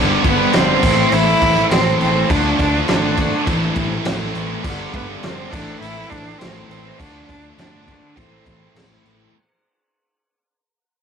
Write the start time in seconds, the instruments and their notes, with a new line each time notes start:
Already playing: picked electric bass G1, distorted electric guitar G2 D3 G3 B3 D4
0.00 distorted electric guitar G4
0.23 picked electric bass G1, distorted electric guitar D3 G3 B3, kick, crash
0.27 cello B3, distorted electric guitar D4 G4
0.39 distorted electric guitar G3 B3 D4 G4
0.53 picked electric bass G1, distorted electric guitar G2 D3 G3 B3 D4, cello C4, snare, crash
0.57 distorted electric guitar G4
0.68 distorted electric guitar G3 B3 D4 G4
0.82 picked electric bass A1, distorted electric guitar A2 E3 A3 C4 E4, kick, crash
0.96 muted distorted electric guitar stroke
1.12 picked electric bass A1, cello E4, crash
1.27 distorted electric guitar A3 C4 E4
1.41 picked electric bass A1, distorted electric guitar E3 A3 C4 E4, kick, crash
1.56 muted distorted electric guitar stroke
1.70 picked electric bass A1, distorted electric guitar A2 E3 A3 C4, cello C4, snare, crash
1.74 distorted electric guitar E4
1.85 distorted electric guitar A3 C4 E4
2.00 picked electric bass A1, distorted electric guitar E3 A3 C4 E4, cello C4, crash
2.14 distorted electric guitar A3 C4 E4
2.28 picked electric bass D2, distorted electric guitar D3 A3 D4 F4, cello D4, kick, crash
2.58 picked electric bass D2, distorted electric guitar D3 A3 D4 F4, cello D4, kick, crash
2.72 distorted electric guitar A3 D4 F4
2.87 picked electric bass G#1, distorted electric guitar D3 A3 D4 F4, cello D4, snare, crash
3.02 distorted electric guitar A3 D4 F4
3.17 distorted electric guitar D3, muted distorted electric guitar stroke, kick, crash
3.22 distorted electric guitar A3 D4 F4
3.35 muted distorted electric guitar stroke
3.46 picked electric bass A1, distorted electric guitar A2 E3 A3 C4 E4, kick, crash
3.61 distorted electric guitar A3 C4 E4
3.76 picked electric bass A1, distorted electric guitar E3 A3 C4 E4, kick, crash
3.92 muted distorted electric guitar stroke
4.04 picked electric bass A1, distorted electric guitar A2 E3 A3 C4 E4, snare, crash
4.21 distorted electric guitar A3 C4 E4
4.34 picked electric bass A1, distorted electric guitar E3 A3 C4 E4, crash
4.47 distorted electric guitar A3 C4 E4
4.62 picked electric bass G1, distorted electric guitar G2 D3 G3 B3 D4, kick, crash
4.92 picked electric bass G1, distorted electric guitar D3 G3 B3 D4, cello B3, kick, crash
5.08 distorted electric guitar B3 D4
5.12 distorted electric guitar G3
5.21 picked electric bass G1, distorted electric guitar G2 D3 G3, cello C4, snare, crash
5.26 distorted electric guitar B3 D4
5.37 distorted electric guitar B3 D4
5.41 distorted electric guitar G3
5.50 picked electric bass A1, distorted electric guitar A2 E3 A3 C4, cello D4, kick, crash
5.55 distorted electric guitar E4
5.68 muted distorted electric guitar stroke
5.80 picked electric bass A1, cello E4, crash
5.96 distorted electric guitar A3 C4 E4
6.10 picked electric bass A1, distorted electric guitar E3 A3 C4, cello D4, kick, crash
6.15 distorted electric guitar E4
6.27 muted distorted electric guitar stroke
6.38 picked electric bass A1, distorted electric guitar A2 E3 A3, cello C4, snare, crash
6.42 distorted electric guitar C4 E4
6.54 distorted electric guitar A3 C4 E4
6.68 picked electric bass A1, distorted electric guitar E3 A3 C4, cello C4, crash
6.72 distorted electric guitar E4
6.83 distorted electric guitar A3 C4 E4
6.97 picked electric bass D2, distorted electric guitar D3 A3 D4 F4, cello D4, kick, crash
7.26 picked electric bass D2, distorted electric guitar D3 A3, cello D4, kick
7.30 distorted electric guitar D4 F4, crash
7.42 distorted electric guitar A3 D4 F4
7.57 picked electric bass G1, distorted electric guitar D3 A3 D4 F4, cello D4, snare, crash
7.73 distorted electric guitar A3 D4 F4
7.87 distorted electric guitar D3 A3 D4 F4, muted distorted electric guitar stroke, kick, crash
8.04 muted distorted electric guitar stroke
8.16 picked electric bass A1, distorted electric guitar A2 E3 A3 C4, cello C4, kick, crash
8.20 distorted electric guitar E4
8.31 distorted electric guitar A3 C4 E4
8.45 picked electric bass A1, distorted electric guitar E3 A3 C4 E4, kick, crash
8.62 muted distorted electric guitar stroke
8.75 picked electric bass A1, distorted electric guitar A2 E3 A3 C4, snare, crash
8.79 distorted electric guitar E4
8.91 distorted electric guitar A3 C4 E4
9.04 picked electric bass A1, distorted electric guitar E3 A3, crash
9.08 distorted electric guitar C4 E4
9.20 distorted electric guitar A3 C4 E4